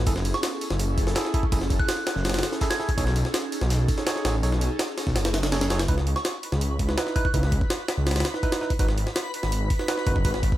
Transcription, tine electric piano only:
0.07 0.13 E4 loud
0.07 0.13 G#4 medium
0.07 0.13 A4 loud
1.07 1.13 E4 medium
1.07 1.13 G#4 medium
1.07 1.13 A4 medium
1.16 1.32 E4 medium
1.16 1.32 G#4 medium
1.16 1.32 A4 loud
1.34 1.44 E4 medium
1.34 1.44 G#4 medium
1.34 1.44 A4 loud
1.52 1.58 E4 loud
1.52 1.58 G#4 medium
1.52 1.58 A4 loud
2.52 2.58 E4 medium
2.52 2.58 G#4 medium
2.52 2.58 A4 medium
2.61 2.77 E4 medium
2.61 2.77 G#4 medium
2.61 2.77 A4 loud
2.79 2.89 E4 medium
2.79 2.89 G#4 medium
2.79 2.89 A4 loud
2.98 3.04 D#4 loud
2.98 3.04 G#4 medium
2.98 3.04 A4 medium
2.98 3.04 C#5 loud
3.98 4.04 D#4 medium
3.98 4.04 G#4 medium
3.98 4.04 A4 medium
3.98 4.04 C#5 medium
4.07 4.23 D#4 medium
4.07 4.23 G#4 medium
4.07 4.23 A4 medium
4.07 4.23 C#5 loud
4.25 4.35 D#4 medium
4.25 4.35 G#4 medium
4.25 4.35 A4 medium
4.25 4.35 C#5 loud
4.43 4.49 D#4 loud
4.43 4.49 G#4 medium
4.43 4.49 A4 medium
4.43 4.49 C#5 loud
5.43 5.49 D#4 medium
5.43 5.49 G#4 medium
5.43 5.49 A4 medium
5.43 5.49 C#5 medium
5.52 5.68 D#4 medium
5.52 5.68 G#4 medium
5.52 5.68 A4 medium
5.52 5.68 C#5 loud
5.70 5.80 D#4 medium
5.70 5.80 G#4 medium
5.70 5.80 A4 medium
5.70 5.80 C#5 loud
5.89 5.95 D#4 loud
5.89 5.95 E4 medium
5.89 5.95 B4 loud
6.89 6.95 D#4 medium
6.89 6.95 E4 medium
6.89 6.95 B4 medium
6.98 7.14 D#4 loud
6.98 7.14 E4 medium
6.98 7.14 B4 loud
7.16 7.26 D#4 medium
7.16 7.26 E4 medium
7.16 7.26 B4 loud
7.34 7.40 D#4 loud
7.34 7.40 E4 medium
7.34 7.40 B4 loud
8.34 8.40 D#4 medium
8.34 8.40 E4 medium
8.34 8.40 B4 medium
8.43 8.59 D#4 loud
8.43 8.59 E4 medium
8.43 8.59 B4 loud
8.61 8.71 D#4 medium
8.61 8.71 E4 medium
8.61 8.71 B4 loud
8.80 8.86 D#4 loud
8.80 8.86 F#4 medium
8.80 8.86 B4 loud
9.80 9.86 D#4 medium
9.80 9.86 F#4 medium
9.80 9.85 B4 medium
9.89 10.05 D#4 loud
9.89 10.05 F#4 medium
9.89 10.05 B4 loud
10.07 10.16 D#4 medium
10.07 10.16 F#4 medium
10.07 10.16 B4 loud
10.25 10.31 D#4 loud
10.25 10.31 F#4 medium
10.25 10.31 B4 loud

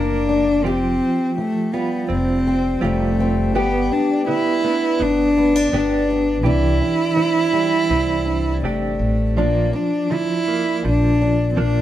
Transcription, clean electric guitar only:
0.00 0.63 F3 medium
0.00 0.72 A#3 medium
0.00 0.73 D4 medium
0.00 0.64 A#4 medium
0.64 3.54 F3 medium
0.64 2.82 G4 soft
1.74 2.81 F4 medium
2.09 2.80 C4 medium
2.81 3.54 C4 medium
2.81 3.62 F4 medium
2.81 3.56 G4 medium
3.55 4.26 B3 medium
3.55 5.73 G4 medium
4.27 4.99 B3 medium
4.64 5.74 D4 medium
5.00 5.72 B3 medium
5.73 6.53 B3 medium
5.73 7.19 D4 soft
5.73 6.43 G4 medium
6.43 9.36 E3 medium
6.43 8.63 G4 medium
7.16 7.90 C4 soft
7.54 8.63 D4 medium
7.91 8.63 C4 medium
8.64 9.45 C4 medium
8.64 9.37 D4 medium
8.64 9.45 G4 medium
9.37 10.10 F3 medium
9.37 11.57 D4 medium
10.10 10.84 F3 medium
10.48 11.56 A#3 medium
10.84 11.56 F3 medium
11.57 11.82 F3 medium
11.57 11.82 A#3 medium
11.57 11.82 D4 medium

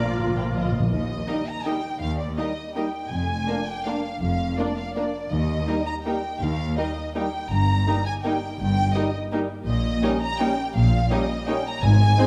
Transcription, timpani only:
0.04 0.10 A#2 soft
0.11 0.18 A#2 soft
0.19 0.26 A#2 medium
0.28 0.34 A#2 medium
0.35 0.41 A#2 medium
0.43 0.49 A#2 medium
0.50 0.56 A#2 medium
0.58 0.64 A#2 medium
0.65 0.71 A#2 medium
0.72 0.78 A#2 medium
0.80 0.87 A#2 medium
5.31 5.83 D#3 medium
11.83 12.27 G#2 medium

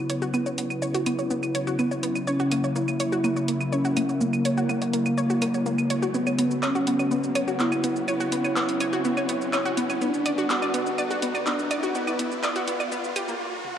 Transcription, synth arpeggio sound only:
0.10 0.14 C#5 loud
0.22 0.29 F#4 loud
0.34 0.45 B3 medium
0.46 0.53 C#5 medium
0.58 0.62 B3 medium
0.82 0.87 C#5 loud
0.94 1.02 F#4 loud
1.06 1.18 B3 medium
1.19 1.26 C#5 medium
1.31 1.35 B3 medium
1.55 1.59 C#5 loud
1.67 1.74 F#4 medium
1.79 1.90 B3 medium
1.91 1.98 C#5 medium
2.03 2.08 B3 medium
2.27 2.32 C#5 medium
2.40 2.47 F#4 loud
2.52 2.63 A#3 medium
2.64 2.71 C#5 medium
2.76 2.80 A#3 medium
3.00 3.04 C#5 loud
3.12 3.20 F#4 loud
3.24 3.35 A#3 medium
3.36 3.44 C#5 medium
3.48 3.53 A#3 medium
3.72 3.77 C#5 loud
3.85 3.92 F#4 loud
3.97 4.08 A#3 medium
4.09 4.16 C#5 medium
4.21 4.25 A#3 medium
4.45 4.50 C#5 loud
4.57 4.65 F#4 loud
4.69 4.81 A#3 medium
4.82 4.89 C#5 medium
4.93 4.98 A#3 medium
5.18 5.22 C#5 loud
5.30 5.37 F#4 loud
5.42 5.53 A#3 medium
5.54 5.61 C#5 medium
5.66 5.71 A#3 medium
5.90 5.95 C#5 loud
6.02 6.10 F#4 loud
6.14 6.26 B3 medium
6.27 6.34 C#5 medium
6.39 6.43 B3 medium
6.63 6.67 C#5 loud
6.75 6.82 F#4 medium
6.87 6.98 B3 medium
6.99 7.07 C#5 medium
7.11 7.16 B3 medium
7.35 7.40 C#5 loud
7.48 7.55 F#4 loud
7.60 7.71 B3 medium
7.72 7.79 C#5 medium
7.84 7.88 B3 medium
8.08 8.12 C#5 loud
8.20 8.28 F#4 loud
8.32 8.43 B3 medium
8.45 8.52 C#5 medium
8.56 8.61 B3 medium
8.81 8.85 C#5 loud
8.93 9.00 F#4 loud
9.05 9.16 B3 medium
9.17 9.24 C#5 medium
9.29 9.33 B3 medium
9.53 9.58 C#5 loud
9.65 9.73 F#4 loud
9.77 9.89 B3 medium
9.90 9.97 C#5 medium
10.01 10.06 B3 medium
10.26 10.30 D5 loud
10.38 10.45 F#4 loud
10.50 10.61 B3 medium
10.62 10.69 D5 medium
10.74 10.79 B3 medium
10.98 11.03 D5 loud
11.11 11.18 F#4 loud
11.22 11.34 B3 medium
11.35 11.42 D5 medium
11.47 11.51 B3 medium
11.71 11.75 D5 loud
11.83 11.90 F#4 loud
11.95 12.06 B3 medium
12.07 12.15 D5 medium
12.19 12.24 B3 medium
12.43 12.48 D5 loud
12.56 12.63 F#4 loud
12.68 12.79 B3 medium
12.80 12.87 D5 medium
12.92 12.96 B3 medium
13.16 13.24 G4 medium
13.28 13.33 A#3 medium

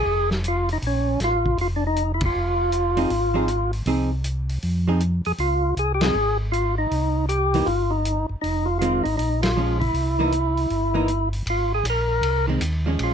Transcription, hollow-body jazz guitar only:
2.97 3.09 F3 medium
2.97 3.09 C4 medium
2.97 3.10 D#4 medium
2.97 3.10 G#4 medium
3.34 3.47 F3 medium
3.34 3.47 C4 medium
3.34 3.47 D#4 medium
3.34 3.48 G#4 medium
3.87 4.09 F3 soft
3.87 4.09 C4 medium
3.87 4.09 D#4 soft
3.87 4.10 G#4 medium
4.88 4.99 F3 soft
4.88 5.00 C4 medium
4.88 5.00 D#4 medium
4.88 5.00 G#4 medium
6.02 6.14 F3 medium
6.02 6.14 G#3 medium
6.02 6.14 C4 medium
7.54 7.66 E3 medium
7.54 7.66 A#3 medium
7.54 7.66 D#4 medium
8.81 9.03 D#3 medium
8.81 9.04 G#3 medium
8.81 9.04 C4 medium
9.57 9.79 F3 medium
9.57 9.79 G#3 medium
9.57 9.80 C#4 medium
10.19 10.31 E3 medium
10.19 10.32 A#3 medium
10.19 10.32 D#4 medium
10.94 11.07 E3 medium
10.94 11.07 A#3 medium
10.94 11.08 D#4 medium
12.48 12.60 D#3 soft
12.48 12.61 G#3 medium
12.48 12.61 C4 medium
12.86 13.14 F3 soft
12.86 13.14 G#3 medium
12.86 13.14 C#4 medium

